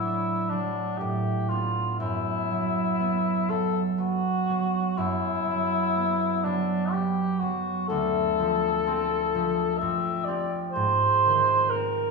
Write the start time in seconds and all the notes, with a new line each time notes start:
Already playing: A2 F#3 E4
0.03 D4
0.49 F#3 D4
0.98 A2 G4
1.49 B3 D4 F4
1.99 F#2 E4
2.51 F#3
2.99 B3
3.50 F#3 A4
3.98 B3 F#4
4.49 F#3
4.98 F#2 E4
5.46 F#3
5.96 B3
6.44 F#3 D4
6.92 B3 G4
7.39 F#3 F#4
7.88 D2 A4
8.39 F3
8.87 C4
9.35 F3
9.78 F2 E5
10.25 C4 G4 D5
10.72 G#2 C5
11.26 D#3
11.70 C4 A#4